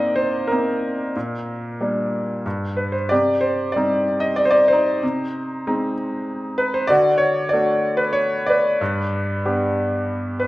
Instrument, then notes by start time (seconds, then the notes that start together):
grand piano
Already playing: C3 A#3 C4 D#4 D5 D#5 F5
0.16 C5
0.48 A#4
0.52 A#3 C4 D#4
1.16 A#2
1.81 G3 A#3 D4
2.46 G2
2.77 B4
2.92 C5
3.09 C3 G4 D5
3.41 C5
3.72 G3 D5
3.76 C4 D#4
4.20 D#5
4.36 D5
4.45 C5
4.51 D5
4.68 C5
4.73 D#4
5.03 C3
5.67 G#3 C4 D#4
6.58 B4
6.74 C5
6.87 D3 F#4 D5
7.18 C#5
7.49 D5
7.53 A3 D4 F#4
7.97 B4
8.13 C#5
8.46 B4 D5
8.81 G2
9.45 B3 D4 G4
10.40 B4